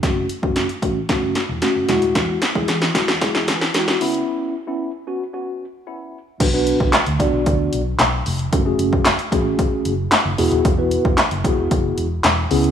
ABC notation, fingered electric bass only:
X:1
M:4/4
L:1/16
Q:1/4=113
K:Bdor
V:1 name="Fingered electric bass" clef=bass
F,,,2 z F,,,2 z A,,,2 z F,,, z E,,, z F,,, E,,, ^D,,, | E,,2 z E,, E,2 z E,, z E,, E,2 E,,2 C,,2 | z16 | B,,,3 B,,, z D,, z B,,, D,,2 B,,,2 B,,,2 ^E,,,2 |
F,,,2 F,,,3 z A,,,2 z2 F,,,2 z F,,, E,,, ^D,,, | E,,,3 E,,, z F,,, z E,,, F,,,2 E,,,2 E,,,2 C,,2 |]